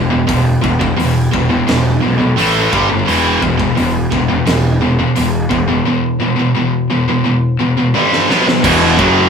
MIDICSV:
0, 0, Header, 1, 4, 480
1, 0, Start_track
1, 0, Key_signature, 1, "minor"
1, 0, Tempo, 696056
1, 203, Time_signature, 4, 2, 24, 8
1, 6407, End_track
2, 0, Start_track
2, 0, Title_t, "Distorted electric guitar"
2, 0, Program_c, 0, 30
2, 69, Note_on_c, 0, 47, 82
2, 74, Note_on_c, 0, 40, 64
2, 180, Note_off_c, 0, 40, 0
2, 186, Note_off_c, 0, 47, 0
2, 189, Note_on_c, 0, 40, 68
2, 194, Note_on_c, 0, 47, 80
2, 412, Note_off_c, 0, 40, 0
2, 414, Note_off_c, 0, 47, 0
2, 426, Note_on_c, 0, 47, 74
2, 429, Note_on_c, 0, 40, 60
2, 542, Note_off_c, 0, 47, 0
2, 543, Note_off_c, 0, 40, 0
2, 550, Note_on_c, 0, 47, 80
2, 551, Note_on_c, 0, 40, 60
2, 661, Note_off_c, 0, 40, 0
2, 664, Note_off_c, 0, 47, 0
2, 670, Note_on_c, 0, 40, 74
2, 672, Note_on_c, 0, 47, 76
2, 893, Note_off_c, 0, 40, 0
2, 894, Note_off_c, 0, 47, 0
2, 912, Note_on_c, 0, 47, 69
2, 913, Note_on_c, 0, 40, 62
2, 1024, Note_off_c, 0, 47, 0
2, 1027, Note_off_c, 0, 40, 0
2, 1033, Note_on_c, 0, 47, 75
2, 1035, Note_on_c, 0, 40, 64
2, 1141, Note_off_c, 0, 40, 0
2, 1143, Note_off_c, 0, 47, 0
2, 1150, Note_on_c, 0, 40, 67
2, 1152, Note_on_c, 0, 47, 74
2, 1373, Note_off_c, 0, 40, 0
2, 1374, Note_off_c, 0, 47, 0
2, 1395, Note_on_c, 0, 40, 57
2, 1395, Note_on_c, 0, 47, 77
2, 1506, Note_off_c, 0, 47, 0
2, 1509, Note_off_c, 0, 40, 0
2, 1515, Note_on_c, 0, 47, 72
2, 1517, Note_on_c, 0, 40, 60
2, 1636, Note_off_c, 0, 47, 0
2, 1638, Note_on_c, 0, 45, 89
2, 1640, Note_on_c, 0, 52, 93
2, 1641, Note_off_c, 0, 40, 0
2, 1644, Note_on_c, 0, 57, 89
2, 1868, Note_off_c, 0, 45, 0
2, 1869, Note_off_c, 0, 52, 0
2, 1870, Note_off_c, 0, 57, 0
2, 1879, Note_on_c, 0, 43, 90
2, 1883, Note_on_c, 0, 50, 86
2, 1884, Note_on_c, 0, 55, 93
2, 1988, Note_off_c, 0, 43, 0
2, 1990, Note_off_c, 0, 50, 0
2, 1990, Note_off_c, 0, 55, 0
2, 2003, Note_on_c, 0, 43, 70
2, 2003, Note_on_c, 0, 50, 74
2, 2120, Note_off_c, 0, 43, 0
2, 2122, Note_off_c, 0, 50, 0
2, 2122, Note_on_c, 0, 40, 89
2, 2125, Note_on_c, 0, 47, 88
2, 2129, Note_on_c, 0, 52, 94
2, 2350, Note_off_c, 0, 40, 0
2, 2351, Note_off_c, 0, 47, 0
2, 2353, Note_off_c, 0, 52, 0
2, 2361, Note_on_c, 0, 47, 80
2, 2364, Note_on_c, 0, 40, 63
2, 2475, Note_off_c, 0, 40, 0
2, 2476, Note_off_c, 0, 47, 0
2, 2484, Note_on_c, 0, 40, 60
2, 2484, Note_on_c, 0, 47, 72
2, 2591, Note_off_c, 0, 40, 0
2, 2596, Note_off_c, 0, 47, 0
2, 2600, Note_on_c, 0, 40, 76
2, 2604, Note_on_c, 0, 47, 77
2, 2819, Note_off_c, 0, 40, 0
2, 2822, Note_off_c, 0, 47, 0
2, 2845, Note_on_c, 0, 47, 76
2, 2848, Note_on_c, 0, 40, 65
2, 2954, Note_off_c, 0, 47, 0
2, 2959, Note_off_c, 0, 40, 0
2, 2962, Note_on_c, 0, 47, 76
2, 2967, Note_on_c, 0, 40, 61
2, 3070, Note_off_c, 0, 40, 0
2, 3074, Note_off_c, 0, 47, 0
2, 3079, Note_on_c, 0, 40, 75
2, 3083, Note_on_c, 0, 47, 77
2, 3299, Note_off_c, 0, 40, 0
2, 3301, Note_off_c, 0, 47, 0
2, 3323, Note_on_c, 0, 47, 71
2, 3325, Note_on_c, 0, 40, 57
2, 3430, Note_off_c, 0, 47, 0
2, 3432, Note_off_c, 0, 40, 0
2, 3438, Note_on_c, 0, 47, 73
2, 3440, Note_on_c, 0, 40, 67
2, 3546, Note_off_c, 0, 40, 0
2, 3550, Note_off_c, 0, 47, 0
2, 3554, Note_on_c, 0, 40, 65
2, 3559, Note_on_c, 0, 47, 90
2, 3777, Note_off_c, 0, 40, 0
2, 3779, Note_off_c, 0, 47, 0
2, 3787, Note_on_c, 0, 47, 76
2, 3793, Note_on_c, 0, 40, 56
2, 3906, Note_off_c, 0, 47, 0
2, 3910, Note_off_c, 0, 40, 0
2, 3915, Note_on_c, 0, 47, 81
2, 3918, Note_on_c, 0, 40, 65
2, 4029, Note_off_c, 0, 40, 0
2, 4033, Note_off_c, 0, 47, 0
2, 4037, Note_on_c, 0, 40, 72
2, 4041, Note_on_c, 0, 47, 83
2, 4258, Note_off_c, 0, 40, 0
2, 4260, Note_off_c, 0, 47, 0
2, 4274, Note_on_c, 0, 40, 66
2, 4274, Note_on_c, 0, 47, 75
2, 4378, Note_off_c, 0, 47, 0
2, 4379, Note_off_c, 0, 40, 0
2, 4387, Note_on_c, 0, 40, 64
2, 4387, Note_on_c, 0, 47, 68
2, 4506, Note_off_c, 0, 40, 0
2, 4508, Note_off_c, 0, 47, 0
2, 4514, Note_on_c, 0, 40, 72
2, 4516, Note_on_c, 0, 47, 73
2, 4736, Note_off_c, 0, 40, 0
2, 4737, Note_off_c, 0, 47, 0
2, 4758, Note_on_c, 0, 47, 71
2, 4760, Note_on_c, 0, 40, 59
2, 4873, Note_off_c, 0, 47, 0
2, 4874, Note_off_c, 0, 40, 0
2, 4881, Note_on_c, 0, 47, 72
2, 4882, Note_on_c, 0, 40, 62
2, 4986, Note_off_c, 0, 40, 0
2, 4986, Note_off_c, 0, 47, 0
2, 4994, Note_on_c, 0, 40, 73
2, 4995, Note_on_c, 0, 47, 82
2, 5215, Note_off_c, 0, 40, 0
2, 5216, Note_off_c, 0, 47, 0
2, 5234, Note_on_c, 0, 47, 80
2, 5237, Note_on_c, 0, 40, 65
2, 5350, Note_off_c, 0, 47, 0
2, 5353, Note_off_c, 0, 40, 0
2, 5358, Note_on_c, 0, 47, 78
2, 5361, Note_on_c, 0, 40, 59
2, 5473, Note_off_c, 0, 40, 0
2, 5475, Note_on_c, 0, 43, 75
2, 5477, Note_off_c, 0, 47, 0
2, 5480, Note_on_c, 0, 50, 90
2, 5481, Note_on_c, 0, 55, 104
2, 5705, Note_off_c, 0, 43, 0
2, 5707, Note_off_c, 0, 50, 0
2, 5707, Note_off_c, 0, 55, 0
2, 5717, Note_on_c, 0, 47, 74
2, 5721, Note_on_c, 0, 54, 83
2, 5722, Note_on_c, 0, 59, 97
2, 5825, Note_off_c, 0, 47, 0
2, 5827, Note_off_c, 0, 54, 0
2, 5828, Note_off_c, 0, 59, 0
2, 5842, Note_on_c, 0, 47, 60
2, 5842, Note_on_c, 0, 54, 79
2, 5957, Note_off_c, 0, 47, 0
2, 5959, Note_on_c, 0, 40, 100
2, 5962, Note_off_c, 0, 54, 0
2, 5966, Note_on_c, 0, 47, 105
2, 5967, Note_on_c, 0, 52, 104
2, 6193, Note_off_c, 0, 40, 0
2, 6196, Note_off_c, 0, 47, 0
2, 6196, Note_off_c, 0, 52, 0
2, 6201, Note_on_c, 0, 42, 98
2, 6207, Note_on_c, 0, 49, 104
2, 6210, Note_on_c, 0, 54, 102
2, 6407, Note_off_c, 0, 42, 0
2, 6407, Note_off_c, 0, 49, 0
2, 6407, Note_off_c, 0, 54, 0
2, 6407, End_track
3, 0, Start_track
3, 0, Title_t, "Picked electric bass"
3, 0, Program_c, 1, 34
3, 0, Note_on_c, 1, 28, 85
3, 150, Note_off_c, 1, 28, 0
3, 200, Note_on_c, 1, 28, 83
3, 391, Note_off_c, 1, 28, 0
3, 442, Note_on_c, 1, 28, 87
3, 632, Note_off_c, 1, 28, 0
3, 684, Note_on_c, 1, 28, 87
3, 874, Note_off_c, 1, 28, 0
3, 922, Note_on_c, 1, 28, 84
3, 1113, Note_off_c, 1, 28, 0
3, 1169, Note_on_c, 1, 28, 89
3, 1357, Note_off_c, 1, 28, 0
3, 1411, Note_on_c, 1, 35, 86
3, 1599, Note_off_c, 1, 35, 0
3, 1647, Note_on_c, 1, 33, 90
3, 1837, Note_off_c, 1, 33, 0
3, 1882, Note_on_c, 1, 31, 89
3, 2074, Note_off_c, 1, 31, 0
3, 2127, Note_on_c, 1, 28, 90
3, 2316, Note_off_c, 1, 28, 0
3, 2361, Note_on_c, 1, 28, 84
3, 2553, Note_off_c, 1, 28, 0
3, 2607, Note_on_c, 1, 28, 88
3, 2797, Note_off_c, 1, 28, 0
3, 2842, Note_on_c, 1, 28, 85
3, 3034, Note_off_c, 1, 28, 0
3, 3079, Note_on_c, 1, 28, 89
3, 3462, Note_off_c, 1, 28, 0
3, 3567, Note_on_c, 1, 28, 85
3, 3757, Note_off_c, 1, 28, 0
3, 3795, Note_on_c, 1, 28, 92
3, 3990, Note_off_c, 1, 28, 0
3, 5957, Note_on_c, 1, 28, 98
3, 6182, Note_off_c, 1, 28, 0
3, 6197, Note_on_c, 1, 30, 94
3, 6407, Note_off_c, 1, 30, 0
3, 6407, End_track
4, 0, Start_track
4, 0, Title_t, "Drums"
4, 199, Note_on_c, 9, 36, 119
4, 201, Note_on_c, 9, 46, 61
4, 268, Note_off_c, 9, 36, 0
4, 270, Note_off_c, 9, 46, 0
4, 440, Note_on_c, 9, 36, 87
4, 509, Note_off_c, 9, 36, 0
4, 560, Note_on_c, 9, 36, 83
4, 629, Note_off_c, 9, 36, 0
4, 686, Note_on_c, 9, 46, 57
4, 755, Note_off_c, 9, 46, 0
4, 921, Note_on_c, 9, 36, 84
4, 990, Note_off_c, 9, 36, 0
4, 1160, Note_on_c, 9, 46, 50
4, 1165, Note_on_c, 9, 38, 106
4, 1229, Note_off_c, 9, 46, 0
4, 1234, Note_off_c, 9, 38, 0
4, 1643, Note_on_c, 9, 46, 52
4, 1712, Note_off_c, 9, 46, 0
4, 1881, Note_on_c, 9, 36, 102
4, 1950, Note_off_c, 9, 36, 0
4, 2127, Note_on_c, 9, 46, 56
4, 2196, Note_off_c, 9, 46, 0
4, 2361, Note_on_c, 9, 36, 86
4, 2430, Note_off_c, 9, 36, 0
4, 2479, Note_on_c, 9, 36, 85
4, 2548, Note_off_c, 9, 36, 0
4, 2603, Note_on_c, 9, 46, 57
4, 2672, Note_off_c, 9, 46, 0
4, 2841, Note_on_c, 9, 36, 84
4, 2910, Note_off_c, 9, 36, 0
4, 3081, Note_on_c, 9, 46, 58
4, 3086, Note_on_c, 9, 38, 104
4, 3150, Note_off_c, 9, 46, 0
4, 3155, Note_off_c, 9, 38, 0
4, 3558, Note_on_c, 9, 46, 54
4, 3627, Note_off_c, 9, 46, 0
4, 3798, Note_on_c, 9, 36, 84
4, 3867, Note_off_c, 9, 36, 0
4, 5477, Note_on_c, 9, 48, 60
4, 5546, Note_off_c, 9, 48, 0
4, 5601, Note_on_c, 9, 38, 64
4, 5670, Note_off_c, 9, 38, 0
4, 5724, Note_on_c, 9, 38, 83
4, 5793, Note_off_c, 9, 38, 0
4, 5845, Note_on_c, 9, 38, 83
4, 5914, Note_off_c, 9, 38, 0
4, 5959, Note_on_c, 9, 36, 119
4, 5960, Note_on_c, 9, 49, 126
4, 5960, Note_on_c, 9, 52, 65
4, 6028, Note_off_c, 9, 36, 0
4, 6029, Note_off_c, 9, 49, 0
4, 6029, Note_off_c, 9, 52, 0
4, 6199, Note_on_c, 9, 36, 110
4, 6268, Note_off_c, 9, 36, 0
4, 6407, End_track
0, 0, End_of_file